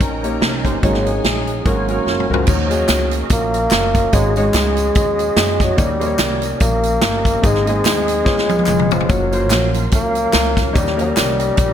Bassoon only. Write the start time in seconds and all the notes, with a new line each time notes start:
2.33 F3
2.51 F#3
3.32 A#3
4.14 G#3
4.37 G#3
5.62 F#3
5.79 G3
6.61 A#3
7.46 G#3
7.69 G#3
8.92 F3
9.10 F#3
9.95 A#3
10.77 G3
11.01 G3